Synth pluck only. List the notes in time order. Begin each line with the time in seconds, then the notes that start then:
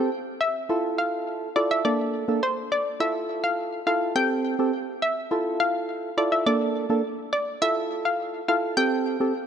0.41 E5
0.98 F5
1.56 D5
1.71 E5
1.85 D5
2.43 C5
2.72 D5
3.00 E5
3.44 F5
3.87 F5
4.16 G5
5.02 E5
5.60 F5
6.18 D5
6.32 E5
6.46 D5
7.33 D5
7.62 E5
8.05 F5
8.48 F5
8.77 G5